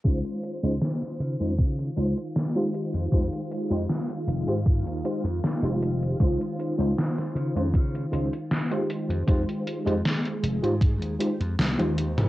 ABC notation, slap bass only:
X:1
M:4/4
L:1/16
Q:1/4=78
K:Dblyd
V:1 name="Slap bass" clef=bass
D,, z2 D,, z2 D, F,, D,2 D,, z4 F,, | F,, z2 F,, z2 F,,, A,,2 E,, z F,, z F,,,3 | D,, z2 D,, z2 D, F,, D,2 D,, z4 F,, | F,, z2 F,, z2 F,,, A,,2 E,, z F,, C,, E,,2 F,,, |]